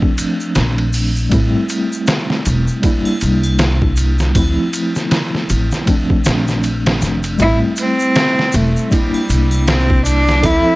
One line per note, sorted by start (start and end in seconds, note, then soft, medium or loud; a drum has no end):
0.00 1.25 F3 medium
0.00 1.26 A3 medium
0.00 1.26 C4 medium
0.00 1.27 D4 medium
0.00 kick medium
0.18 ride medium
0.18 shaker medium
0.40 shaker soft
0.55 1.29 A#1 medium
0.55 snare loud
0.55 ride medium
0.55 shaker soft
0.78 ride soft
0.93 open hi-hat medium
0.93 shaker medium
1.16 shaker soft
1.29 1.52 A1 medium
1.29 2.77 G3 medium
1.29 2.77 A3 medium
1.29 2.78 C4 medium
1.29 kick loud
1.29 ride medium
1.29 shaker soft
1.34 2.79 E4 medium
1.69 ride medium
1.69 shaker medium
1.93 shaker medium
2.07 snare loud
2.07 ride medium
2.07 shaker soft
2.30 snare soft
2.45 2.66 E1 loud
2.45 ride medium
2.45 shaker medium
2.68 shaker soft
2.82 4.29 G3 medium
2.82 4.29 A#3 medium
2.82 4.30 D4 medium
2.82 4.31 E4 medium
2.82 kick loud
2.82 ride medium
2.82 shaker soft
3.05 triangle medium
3.21 4.33 C2 medium
3.21 ride medium
3.21 shaker medium
3.43 triangle medium
3.43 shaker soft
3.58 snare loud
3.58 ride medium
3.58 shaker soft
3.82 kick medium
3.96 ride medium
3.96 shaker medium
4.19 snare soft
4.19 shaker soft
4.34 4.56 D2 loud
4.34 5.81 F3 medium
4.34 5.81 A3 medium
4.34 5.82 C4 medium
4.34 5.83 E4 medium
4.34 kick loud
4.34 ride medium
4.34 triangle medium
4.34 shaker soft
4.73 ride medium
4.73 shaker medium
4.95 snare soft
4.95 shaker soft
5.11 snare loud
5.11 ride medium
5.11 shaker soft
5.35 snare soft
5.49 5.70 A1 medium
5.49 ride medium
5.49 shaker medium
5.72 snare soft
5.72 shaker soft
5.86 7.33 F3 medium
5.86 7.33 A3 medium
5.86 7.34 C4 medium
5.86 7.34 D4 medium
5.86 kick loud
5.86 ride medium
5.86 shaker soft
6.10 kick medium
6.24 6.99 A#1 medium
6.24 snare loud
6.24 ride medium
6.24 shaker medium
6.48 snare soft
6.48 shaker soft
6.63 ride medium
6.63 shaker soft
6.86 snare medium
6.86 ride medium
7.01 7.36 F1 medium
7.01 snare soft
7.01 shaker medium
7.23 ride medium
7.23 shaker soft
7.38 7.60 A1 medium
7.38 8.84 G3 medium
7.38 8.85 A3 medium
7.38 8.86 C4 medium
7.38 8.86 E4 medium
7.38 kick loud
7.38 ride medium
7.38 shaker soft
7.42 7.58 E4 loud
7.76 8.57 C4 loud
7.76 ride medium
7.76 shaker medium
7.99 shaker medium
8.15 snare loud
8.15 ride medium
8.15 shaker soft
8.39 snare soft
8.52 8.74 E1 medium
8.52 8.95 A3 medium
8.52 ride medium
8.52 shaker medium
8.76 shaker soft
8.90 10.37 G3 medium
8.90 9.71 G3 medium
8.90 10.37 A#3 medium
8.90 10.38 D4 medium
8.90 10.38 E4 medium
8.90 kick loud
8.90 ride medium
8.90 shaker soft
9.14 triangle medium
9.29 10.41 C2 medium
9.29 ride medium
9.29 shaker medium
9.51 triangle medium
9.51 shaker soft
9.67 10.07 C4 medium
9.67 snare loud
9.67 ride medium
9.67 shaker soft
9.90 kick medium
10.05 10.47 D4 loud
10.05 ride medium
10.05 shaker medium
10.27 snare soft
10.27 shaker soft
10.41 10.63 D2 loud
10.41 10.76 F3 medium
10.41 10.76 C4 medium
10.41 10.76 E4 loud
10.41 10.76 E4 medium
10.41 10.76 A4 medium
10.41 kick loud
10.41 ride medium
10.41 triangle medium
10.41 shaker soft